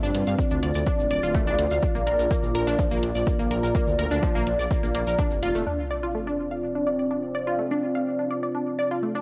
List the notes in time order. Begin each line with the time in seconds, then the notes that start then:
Already playing: C4 F4 D5
0.03 G2 D4, shaker
0.15 G2, closed hi-hat
0.27 G2 F5, shaker
0.39 kick, shaker
0.50 D2 D4, shaker
0.63 D2 D5, closed hi-hat
0.74 D2 D5, shaker
0.87 D4, kick, shaker
0.99 D1, shaker
1.11 D1 D5, closed hi-hat
1.23 D1 F4, shaker
1.35 A3, kick, shaker
1.47 D2 D4, shaker
1.59 D2, closed hi-hat
1.71 D2 F5, shaker
1.82 A#3, kick, shaker
1.95 A#1 A#3, shaker
2.07 A#1 A#4, closed hi-hat
2.19 A#1 A#4, shaker
2.31 A#3, kick, shaker
2.43 A#1, shaker
2.55 A#1 A#4, closed hi-hat
2.67 A#1 D4, shaker
2.79 F3, kick, shaker
2.91 A#1 A#3, shaker
3.03 A#1, closed hi-hat
3.15 A#1 D5, shaker
3.27 kick, shaker
3.39 A#1 A#3, shaker
3.51 A#1 A#4, closed hi-hat
3.63 A#1 A#4, shaker
3.75 A#3, kick, shaker
3.87 D2, shaker
3.99 D2 A#4, closed hi-hat
4.11 D2 D4, shaker
4.23 F3, kick, shaker
4.35 A#1 A#3, shaker
4.47 A#1, closed hi-hat
4.59 A#1 D5, shaker
4.71 kick, shaker
4.83 A#1 A#3, shaker
4.95 A#1 A#3, closed hi-hat
5.07 A#1 A#4, shaker
5.19 D4, kick, shaker
5.30 F1, shaker
5.43 F1 F4, closed hi-hat
5.55 F1 A3, shaker
5.67 C4 D4 F4 D5, sub drop
5.91 D5
6.03 F4
6.15 A3
6.27 D4
6.51 F5
6.75 D4
6.87 D5
6.99 D5
7.11 D4
7.35 D5
7.47 F4
7.59 A3
7.71 D4
7.95 F5
8.19 D4
8.31 D5
8.43 D5
8.55 D4
8.79 D5
8.91 F4
9.03 A3
9.15 D4